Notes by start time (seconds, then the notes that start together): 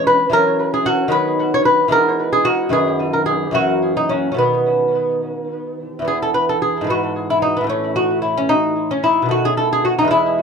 Already playing: E3 G#3 C#4
0.07 B4
0.29 E3 F#3 C#4 A#4
0.74 G#4
0.86 F#4
1.08 D#3 F#3 B3 B4
1.54 C#5
1.65 B4
1.88 E3 G#3 B3 A#4
2.33 G#4
2.45 F#4
2.69 F#2 D#3 B3 G#4
3.13 A#4
3.26 G#4
3.51 F#2 E3 A#3 F#4
3.97 D#4
4.09 C#4
4.32 B2 C#4
4.36 D#3 B3
5.99 E2 E3
6.05 B3 G#4
6.22 A4
6.34 B4
6.49 A4
6.62 G#4
6.81 G#2 E3
6.87 B3 F#4
7.30 E4
7.42 D#4
7.57 B3
7.61 A2 E3
7.67 A3 C#4
7.96 F#4
8.22 E4
8.37 C#4
8.49 D#4
8.91 C#4
9.04 E4
9.22 B2 D#3
9.29 A3 F#4
9.45 G#4
9.57 A4
9.73 G#4
9.85 F#4
9.99 E2 D#4
10.05 E3 G#3
10.11 E4